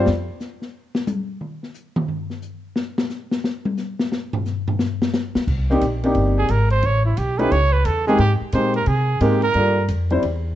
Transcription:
0.06 upright bass F2, snare
0.40 snare, hi-hat pedal
0.62 snare
0.95 snare
1.07 hi-hat pedal, high tom
1.41 mid tom
1.63 snare
1.74 hi-hat pedal
1.96 mid tom
2.08 floor tom
2.30 snare
2.42 hi-hat pedal
2.76 snare
2.98 snare
3.09 snare, hi-hat pedal
3.31 snare
3.44 snare
3.65 high tom
3.77 snare, hi-hat pedal
3.99 snare
4.12 snare
4.33 floor tom
4.46 snare, hi-hat pedal
4.68 floor tom
4.79 snare
5.02 snare
5.13 snare, hi-hat pedal
5.35 muted upright bass stroke, snare
5.47 upright bass C2, kick, crash
5.70 grand piano A#3 C4 D4 D#4 G4, snare
5.81 upright bass A#1, kick, hi-hat pedal, ride
6.03 grand piano A#3 C4 D4 D#4 G4, ride
6.15 upright bass G1, kick, ride
6.38 trumpet G#4
6.48 upright bass G#1, trumpet A#4, kick, hi-hat pedal, ride
6.70 trumpet C5, ride
6.82 upright bass A1, trumpet C#5, kick, ride
7.05 trumpet E4
7.17 upright bass B1, trumpet G4, kick, hi-hat pedal, ride
7.38 grand piano A3 C#4 D#4 E4 G4, trumpet B4, ride
7.51 upright bass C#2, trumpet C#5, kick, ride
7.73 trumpet B4
7.85 upright bass E2, trumpet A4, kick, hi-hat pedal, ride
8.07 grand piano G#3 A#3 C4 D#4 G4, trumpet G#4, snare
8.18 upright bass G#2, trumpet G4, ride
8.41 muted upright bass stroke
8.52 upright bass A#2, grand piano G#3 A#3 C4 D#4 G4, trumpet C5, kick, hi-hat pedal, ride
8.74 trumpet A#4, ride
8.86 upright bass C3, trumpet G#4, kick, ride
9.21 upright bass G#2, grand piano G#3 A#3 C4 D#4 A#4, trumpet G4, kick, hi-hat pedal, ride
9.42 trumpet A#4, ride
9.54 upright bass G2, grand piano G3 A#3 D4 F4 A4, kick, ride
9.88 upright bass F2, kick, hi-hat pedal, ride
10.10 grand piano G3 C4 D4 E4 C5, ride
10.22 upright bass E2, kick, ride

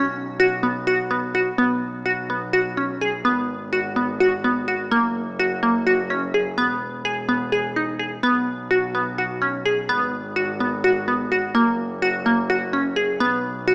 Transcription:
Already playing: double bass B1, synth pluck C#4
0.40 synth pluck F#4
0.63 synth pluck B3
0.87 synth pluck F#4
1.11 synth pluck B3
1.35 synth pluck F#4
1.58 double bass B1, synth pluck B3
2.06 synth pluck F#4
2.30 synth pluck B3
2.53 synth pluck F#4
2.77 synth pluck C#4
3.01 synth pluck G#4
3.25 double bass G#1, synth pluck B3
3.73 synth pluck F#4
3.96 synth pluck B3
4.20 synth pluck F#4
4.44 synth pluck B3
4.68 synth pluck F#4
4.91 double bass F#1, synth pluck A#3
5.39 synth pluck F#4
5.63 synth pluck A#3
5.87 synth pluck F#4
6.10 synth pluck C#4
6.34 synth pluck G#4
6.58 double bass E1, synth pluck B3
7.05 synth pluck G#4
7.29 synth pluck B3
7.52 synth pluck G#4
7.76 synth pluck D#4
7.99 synth pluck G#4
8.23 double bass B1, synth pluck B3
8.71 synth pluck F#4
8.95 synth pluck B3
9.18 synth pluck F#4
9.42 synth pluck C#4
9.66 synth pluck G#4
9.89 double bass G#1, synth pluck B3
10.36 synth pluck F#4
10.60 synth pluck B3
10.84 synth pluck F#4
11.08 synth pluck B3
11.32 synth pluck F#4
11.54 double bass F#1, synth pluck A#3
12.02 synth pluck F#4
12.26 synth pluck A#3
12.50 synth pluck F#4
12.73 synth pluck C#4
12.96 synth pluck G#4
13.20 double bass B1, synth pluck B3
13.68 synth pluck F#4

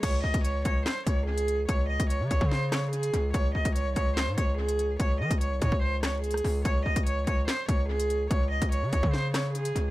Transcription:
0.03 808-style bass C#2, cello C#5, kick, closed hi-hat, crash
0.24 808-style bass C#2, cello D#5
0.34 808-style bass C#2, kick, closed hi-hat
0.44 cello C#5, closed hi-hat
0.65 808-style bass C#2, cello C#5, kick, closed hi-hat
0.86 cello C5, snare, clap
1.07 808-style bass C#2, cello C#5, kick, closed hi-hat
1.27 cello G#4
1.38 closed hi-hat
1.48 closed hi-hat
1.68 808-style bass C#2, cello C#5, kick, closed hi-hat
1.89 cello D#5
2.00 808-style bass C#2, kick, closed hi-hat
2.10 cello C#5, closed hi-hat
2.20 808-style bass C#3
2.30 808-style bass C2, cello C#5, kick, closed hi-hat
2.41 808-style bass C#3, kick
2.51 cello C5, snare
2.72 cello C#5, cross-stick, snare, clap, closed hi-hat
2.92 cello G#4, closed hi-hat
3.03 closed hi-hat
3.13 808-style bass C#2, closed hi-hat
3.33 808-style bass C#2, cello C#5, kick, closed hi-hat
3.55 808-style bass C#2, cello D#5
3.65 808-style bass C#2, kick, closed hi-hat
3.75 cello C#5, closed hi-hat
3.86 808-style bass C2
3.96 808-style bass C#2, cello C#5, kick, closed hi-hat
4.17 cello C5, snare, clap
4.27 808-style bass G#2
4.38 808-style bass C#2, cello C#5, kick, closed hi-hat
4.59 cello G#4
4.69 closed hi-hat
4.79 closed hi-hat
5.00 808-style bass C#2, cello C#5, kick, closed hi-hat
5.20 808-style bass E3, cello D#5
5.31 808-style bass C#2, kick, closed hi-hat
5.41 cello C#5, closed hi-hat
5.51 808-style bass C2
5.62 808-style bass G#2, cello C#5, kick, closed hi-hat
5.72 808-style bass C#2, kick
5.83 cello C5
6.03 cello C#5, cross-stick, snare, clap, closed hi-hat
6.23 cello G#4, closed hi-hat
6.31 cross-stick, closed hi-hat
6.37 closed hi-hat
6.44 808-style bass C#2, open hi-hat
6.65 808-style bass C#2, cello C#5, kick, closed hi-hat
6.86 808-style bass C#2, cello D#5
6.96 808-style bass C#2, kick, closed hi-hat
7.06 cello C#5, closed hi-hat
7.27 808-style bass C#2, cello C#5, kick, closed hi-hat
7.48 cello C5, snare, clap
7.69 808-style bass C#2, cello C#5, kick, closed hi-hat
7.89 cello G#4
8.00 closed hi-hat
8.10 closed hi-hat
8.30 808-style bass C#2, cello C#5, kick, closed hi-hat
8.51 cello D#5
8.62 808-style bass C#2, kick, closed hi-hat
8.72 cello C#5, closed hi-hat
8.82 808-style bass C#3
8.92 808-style bass C2, cello C#5, kick, closed hi-hat
9.03 808-style bass C#3, kick
9.13 cello C5, snare
9.34 cello C#5, cross-stick, snare, clap, closed hi-hat
9.54 cello G#4, closed hi-hat
9.65 closed hi-hat
9.76 808-style bass C#2, closed hi-hat

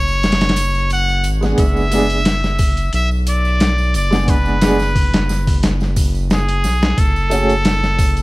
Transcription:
Already playing: analog synth bass F#1, muted trumpet C#5
0.08 tambourine
0.23 snare, closed hi-hat, tambourine
0.32 snare, closed hi-hat
0.41 snare, closed hi-hat, tambourine
0.49 snare, closed hi-hat
0.56 closed hi-hat, tambourine
0.75 tambourine
0.90 muted trumpet F#5, closed hi-hat, tambourine
1.09 tambourine
1.24 analog synth bass G#1, closed hi-hat, tambourine
1.41 felt piano G#3 B3 D4, snare, tambourine
1.46 felt piano G#4
1.58 analog synth bass F#1, muted trumpet E5, kick, closed hi-hat, tambourine
1.77 tambourine
1.91 felt piano G#3 B3 D4, closed hi-hat, tambourine
1.95 felt piano G#4
2.10 closed hi-hat, tambourine
2.25 snare, closed hi-hat, tambourine
2.44 snare, tambourine
2.59 kick, open hi-hat, tambourine
2.77 closed hi-hat, tambourine
2.93 analog synth bass B1, muted trumpet E5, closed hi-hat, tambourine
3.11 tambourine
3.27 muted trumpet D5, closed hi-hat, tambourine
3.45 tambourine
3.60 snare, closed hi-hat, tambourine
3.78 tambourine
3.94 analog synth bass F#1, muted trumpet D5, closed hi-hat, tambourine
4.11 felt piano G#3 B3 D4, snare, tambourine
4.16 felt piano G#4
4.28 muted trumpet B4, kick, closed hi-hat, tambourine
4.45 tambourine
4.61 felt piano G#3 B3 D4, snare, closed hi-hat, tambourine
4.66 felt piano G#4
4.79 snare, tambourine
4.95 kick, open hi-hat, tambourine
5.14 snare, closed hi-hat, tambourine
5.29 snare, tambourine
5.47 kick, open hi-hat, tambourine
5.63 snare, closed hi-hat, tambourine
5.80 snare, tambourine
5.96 kick, open hi-hat, tambourine
6.15 tambourine
6.30 muted trumpet G#4, snare, tambourine
6.49 closed hi-hat, tambourine
6.64 analog synth bass B1, snare, tambourine
6.82 snare, tambourine
6.98 analog synth bass F#1, muted trumpet A4, kick, closed hi-hat, tambourine
7.16 tambourine
7.30 felt piano A3 C#4 F#4, closed hi-hat, tambourine
7.35 felt piano G#4
7.50 closed hi-hat, tambourine
7.65 snare, closed hi-hat, tambourine
7.83 snare, tambourine
7.99 kick, open hi-hat, tambourine
8.17 closed hi-hat, tambourine

